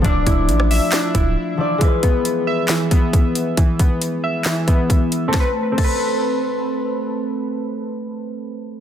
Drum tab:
CC |----------------|----------------|----------------|----x-----------|
HH |x-x-x-o-x-x-----|x-x-x---x-x-x-x-|x-x-x---x-x-x-x-|----------------|
CP |--------x-------|--------x-------|--------x-------|----------------|
SD |-----r--o-------|--------o-------|--------o-------|o---------------|
BD |o-o-------o-----|o-o-------o-o---|o-o-------o-o---|o---o-----------|

CC |----------------|
HH |----------------|
CP |----------------|
SD |----------------|
BD |----------------|